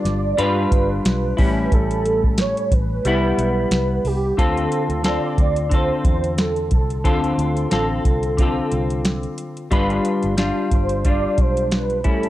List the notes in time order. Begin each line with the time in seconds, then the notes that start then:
Already playing: D3 G3 D4 F4 B4 D5
0.05 G1, snare, closed hi-hat
0.37 G2 G3 D4 F4 B4, closed hi-hat
0.72 G1, kick, closed hi-hat
1.05 B1, snare, closed hi-hat
1.37 A1 A2 G3 C#4 E4, kick, open hi-hat
1.71 A1 A4, kick, closed hi-hat
1.91 closed hi-hat
2.06 closed hi-hat
2.24 kick
2.38 C#5, snare, closed hi-hat
2.57 closed hi-hat
2.71 A1 B4, kick, closed hi-hat
3.05 C2 G3 B3 E4, closed hi-hat
3.38 B1, closed hi-hat
3.71 C2, snare, closed hi-hat
4.05 C2 G4, open hi-hat
4.37 D2 D3 C4 F4 A4, kick, closed hi-hat
4.57 closed hi-hat
4.72 closed hi-hat
4.89 D2, closed hi-hat
5.03 D3 C4 F4 A4 D5, snare, closed hi-hat
5.38 D2, kick, closed hi-hat
5.56 closed hi-hat
5.70 D3 C4 F4, kick, closed hi-hat
5.74 A4 C5
6.05 E2, kick, closed hi-hat
6.24 closed hi-hat
6.38 A4, snare, closed hi-hat
6.56 closed hi-hat
6.71 C2 A4, kick, closed hi-hat
6.90 closed hi-hat
7.04 D2 D3 C4 F4 A4, kick, closed hi-hat
7.24 closed hi-hat
7.38 D2, closed hi-hat
7.57 closed hi-hat
7.70 A1 D3 C4 F4 A4, snare, closed hi-hat
8.05 C2, kick, closed hi-hat
8.23 closed hi-hat
8.37 D3 C4 F4, kick, closed hi-hat
8.42 A4
8.72 C2, closed hi-hat
8.90 closed hi-hat
9.05 snare, closed hi-hat
9.23 closed hi-hat
9.38 closed hi-hat
9.57 closed hi-hat
9.71 G1 G3 D4 F4 B4, kick, closed hi-hat
9.90 closed hi-hat
10.05 closed hi-hat
10.23 G1, closed hi-hat
10.37 G3 D4 F4, snare, closed hi-hat
10.71 G1 C5, kick, closed hi-hat
10.89 closed hi-hat
11.05 G3 D4 F4 D5, kick, closed hi-hat
11.38 B1 C5, kick, closed hi-hat
11.57 closed hi-hat
11.71 B4, snare, closed hi-hat
11.90 closed hi-hat
12.04 A1 A2 G3 C#4 E4 A4, kick, closed hi-hat
12.23 closed hi-hat